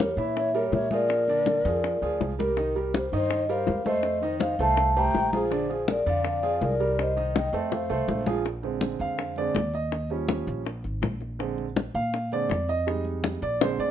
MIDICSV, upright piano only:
0, 0, Header, 1, 2, 480
1, 0, Start_track
1, 0, Tempo, 367872
1, 1435, Time_signature, 4, 2, 24, 8
1, 18148, End_track
2, 0, Start_track
2, 0, Title_t, "Upright piano"
2, 0, Program_c, 0, 0
2, 0, Note_on_c, 0, 55, 62
2, 0, Note_on_c, 0, 67, 69
2, 0, Note_on_c, 0, 70, 65
2, 153, Note_off_c, 0, 55, 0
2, 153, Note_off_c, 0, 67, 0
2, 155, Note_off_c, 0, 70, 0
2, 234, Note_on_c, 0, 52, 70
2, 237, Note_on_c, 0, 64, 79
2, 239, Note_on_c, 0, 76, 84
2, 628, Note_off_c, 0, 52, 0
2, 630, Note_off_c, 0, 64, 0
2, 631, Note_off_c, 0, 76, 0
2, 711, Note_on_c, 0, 55, 81
2, 717, Note_on_c, 0, 67, 73
2, 719, Note_on_c, 0, 70, 75
2, 1106, Note_off_c, 0, 55, 0
2, 1110, Note_off_c, 0, 67, 0
2, 1111, Note_off_c, 0, 70, 0
2, 1199, Note_on_c, 0, 53, 80
2, 1199, Note_on_c, 0, 65, 76
2, 1206, Note_on_c, 0, 68, 64
2, 1591, Note_off_c, 0, 53, 0
2, 1591, Note_off_c, 0, 65, 0
2, 1595, Note_off_c, 0, 68, 0
2, 1684, Note_on_c, 0, 50, 71
2, 1687, Note_on_c, 0, 74, 75
2, 1688, Note_on_c, 0, 62, 69
2, 2074, Note_off_c, 0, 50, 0
2, 2076, Note_off_c, 0, 74, 0
2, 2077, Note_off_c, 0, 62, 0
2, 2154, Note_on_c, 0, 53, 69
2, 2161, Note_on_c, 0, 65, 61
2, 2163, Note_on_c, 0, 68, 65
2, 2549, Note_off_c, 0, 53, 0
2, 2553, Note_off_c, 0, 65, 0
2, 2554, Note_off_c, 0, 68, 0
2, 2634, Note_on_c, 0, 53, 78
2, 2638, Note_on_c, 0, 65, 73
2, 2643, Note_on_c, 0, 68, 70
2, 3029, Note_off_c, 0, 53, 0
2, 3031, Note_off_c, 0, 65, 0
2, 3034, Note_off_c, 0, 68, 0
2, 3116, Note_on_c, 0, 55, 73
2, 3121, Note_on_c, 0, 70, 70
2, 3123, Note_on_c, 0, 67, 66
2, 3313, Note_off_c, 0, 55, 0
2, 3316, Note_off_c, 0, 70, 0
2, 3317, Note_off_c, 0, 67, 0
2, 3354, Note_on_c, 0, 51, 65
2, 3358, Note_on_c, 0, 63, 73
2, 3363, Note_on_c, 0, 75, 68
2, 3552, Note_off_c, 0, 51, 0
2, 3554, Note_off_c, 0, 63, 0
2, 3557, Note_off_c, 0, 75, 0
2, 3597, Note_on_c, 0, 55, 69
2, 3599, Note_on_c, 0, 67, 65
2, 3603, Note_on_c, 0, 70, 61
2, 3991, Note_off_c, 0, 55, 0
2, 3992, Note_off_c, 0, 67, 0
2, 3994, Note_off_c, 0, 70, 0
2, 4084, Note_on_c, 0, 51, 77
2, 4087, Note_on_c, 0, 63, 83
2, 4088, Note_on_c, 0, 75, 73
2, 4475, Note_off_c, 0, 51, 0
2, 4477, Note_off_c, 0, 63, 0
2, 4477, Note_off_c, 0, 75, 0
2, 4557, Note_on_c, 0, 55, 80
2, 4561, Note_on_c, 0, 67, 73
2, 4563, Note_on_c, 0, 70, 78
2, 4951, Note_off_c, 0, 55, 0
2, 4953, Note_off_c, 0, 67, 0
2, 4954, Note_off_c, 0, 70, 0
2, 5039, Note_on_c, 0, 57, 68
2, 5041, Note_on_c, 0, 69, 70
2, 5043, Note_on_c, 0, 72, 77
2, 5432, Note_off_c, 0, 57, 0
2, 5433, Note_off_c, 0, 69, 0
2, 5434, Note_off_c, 0, 72, 0
2, 5512, Note_on_c, 0, 51, 75
2, 5512, Note_on_c, 0, 63, 75
2, 5517, Note_on_c, 0, 75, 74
2, 5908, Note_off_c, 0, 51, 0
2, 5908, Note_off_c, 0, 63, 0
2, 5911, Note_off_c, 0, 75, 0
2, 6001, Note_on_c, 0, 57, 77
2, 6005, Note_on_c, 0, 69, 74
2, 6009, Note_on_c, 0, 72, 74
2, 6393, Note_off_c, 0, 57, 0
2, 6395, Note_off_c, 0, 69, 0
2, 6398, Note_off_c, 0, 72, 0
2, 6478, Note_on_c, 0, 57, 78
2, 6481, Note_on_c, 0, 72, 72
2, 6484, Note_on_c, 0, 67, 76
2, 6871, Note_off_c, 0, 57, 0
2, 6873, Note_off_c, 0, 72, 0
2, 6875, Note_off_c, 0, 67, 0
2, 6960, Note_on_c, 0, 53, 71
2, 6963, Note_on_c, 0, 65, 75
2, 6968, Note_on_c, 0, 68, 71
2, 7156, Note_off_c, 0, 53, 0
2, 7157, Note_off_c, 0, 65, 0
2, 7161, Note_off_c, 0, 68, 0
2, 7183, Note_on_c, 0, 50, 70
2, 7191, Note_on_c, 0, 62, 69
2, 7197, Note_on_c, 0, 74, 72
2, 7386, Note_off_c, 0, 50, 0
2, 7390, Note_off_c, 0, 62, 0
2, 7394, Note_off_c, 0, 74, 0
2, 7430, Note_on_c, 0, 53, 63
2, 7433, Note_on_c, 0, 68, 58
2, 7434, Note_on_c, 0, 65, 60
2, 7826, Note_off_c, 0, 53, 0
2, 7829, Note_off_c, 0, 65, 0
2, 7829, Note_off_c, 0, 68, 0
2, 7910, Note_on_c, 0, 50, 80
2, 7915, Note_on_c, 0, 62, 77
2, 7915, Note_on_c, 0, 74, 84
2, 8306, Note_off_c, 0, 50, 0
2, 8309, Note_off_c, 0, 62, 0
2, 8309, Note_off_c, 0, 74, 0
2, 8386, Note_on_c, 0, 53, 73
2, 8386, Note_on_c, 0, 65, 78
2, 8390, Note_on_c, 0, 68, 75
2, 8784, Note_off_c, 0, 53, 0
2, 8784, Note_off_c, 0, 65, 0
2, 8787, Note_off_c, 0, 68, 0
2, 8874, Note_on_c, 0, 55, 77
2, 8877, Note_on_c, 0, 67, 65
2, 8878, Note_on_c, 0, 70, 70
2, 9269, Note_off_c, 0, 55, 0
2, 9270, Note_off_c, 0, 67, 0
2, 9271, Note_off_c, 0, 70, 0
2, 9350, Note_on_c, 0, 51, 70
2, 9355, Note_on_c, 0, 63, 68
2, 9355, Note_on_c, 0, 75, 80
2, 9746, Note_off_c, 0, 51, 0
2, 9749, Note_off_c, 0, 63, 0
2, 9749, Note_off_c, 0, 75, 0
2, 9828, Note_on_c, 0, 57, 69
2, 9837, Note_on_c, 0, 69, 68
2, 9838, Note_on_c, 0, 72, 70
2, 10225, Note_off_c, 0, 57, 0
2, 10230, Note_off_c, 0, 69, 0
2, 10231, Note_off_c, 0, 72, 0
2, 10301, Note_on_c, 0, 57, 74
2, 10306, Note_on_c, 0, 69, 76
2, 10313, Note_on_c, 0, 72, 80
2, 10701, Note_off_c, 0, 57, 0
2, 10704, Note_off_c, 0, 69, 0
2, 10708, Note_off_c, 0, 72, 0
2, 10782, Note_on_c, 0, 53, 66
2, 10785, Note_on_c, 0, 65, 73
2, 10791, Note_on_c, 0, 68, 72
2, 10985, Note_off_c, 0, 53, 0
2, 10987, Note_off_c, 0, 65, 0
2, 10990, Note_off_c, 0, 68, 0
2, 11259, Note_on_c, 0, 50, 47
2, 11269, Note_on_c, 0, 56, 43
2, 11278, Note_on_c, 0, 60, 55
2, 11757, Note_on_c, 0, 77, 73
2, 12203, Note_off_c, 0, 77, 0
2, 12211, Note_off_c, 0, 50, 0
2, 12215, Note_off_c, 0, 56, 0
2, 12220, Note_off_c, 0, 60, 0
2, 12231, Note_on_c, 0, 50, 47
2, 12234, Note_on_c, 0, 56, 48
2, 12237, Note_on_c, 0, 74, 80
2, 12240, Note_on_c, 0, 60, 57
2, 12449, Note_off_c, 0, 50, 0
2, 12451, Note_off_c, 0, 56, 0
2, 12454, Note_off_c, 0, 60, 0
2, 12683, Note_off_c, 0, 74, 0
2, 12716, Note_on_c, 0, 75, 75
2, 13162, Note_off_c, 0, 75, 0
2, 13181, Note_on_c, 0, 53, 50
2, 13192, Note_on_c, 0, 55, 47
2, 13197, Note_on_c, 0, 61, 55
2, 13871, Note_off_c, 0, 53, 0
2, 13877, Note_off_c, 0, 55, 0
2, 13880, Note_off_c, 0, 61, 0
2, 14863, Note_on_c, 0, 50, 55
2, 14871, Note_on_c, 0, 56, 44
2, 14876, Note_on_c, 0, 60, 53
2, 15187, Note_off_c, 0, 50, 0
2, 15192, Note_off_c, 0, 56, 0
2, 15194, Note_off_c, 0, 60, 0
2, 15592, Note_on_c, 0, 77, 88
2, 16039, Note_off_c, 0, 77, 0
2, 16078, Note_on_c, 0, 50, 50
2, 16081, Note_on_c, 0, 56, 42
2, 16085, Note_on_c, 0, 60, 56
2, 16087, Note_on_c, 0, 74, 88
2, 16291, Note_off_c, 0, 50, 0
2, 16293, Note_off_c, 0, 56, 0
2, 16295, Note_off_c, 0, 60, 0
2, 16526, Note_off_c, 0, 74, 0
2, 16559, Note_on_c, 0, 75, 90
2, 16790, Note_on_c, 0, 55, 52
2, 16803, Note_on_c, 0, 56, 44
2, 16810, Note_on_c, 0, 63, 53
2, 17002, Note_off_c, 0, 75, 0
2, 17474, Note_off_c, 0, 55, 0
2, 17481, Note_off_c, 0, 56, 0
2, 17485, Note_off_c, 0, 63, 0
2, 17520, Note_on_c, 0, 74, 85
2, 17748, Note_off_c, 0, 74, 0
2, 17754, Note_on_c, 0, 50, 48
2, 17760, Note_on_c, 0, 56, 52
2, 17763, Note_on_c, 0, 72, 80
2, 17767, Note_on_c, 0, 60, 55
2, 17989, Note_off_c, 0, 72, 0
2, 18003, Note_on_c, 0, 74, 88
2, 18148, Note_off_c, 0, 50, 0
2, 18148, Note_off_c, 0, 56, 0
2, 18148, Note_off_c, 0, 60, 0
2, 18148, Note_off_c, 0, 74, 0
2, 18148, End_track
0, 0, End_of_file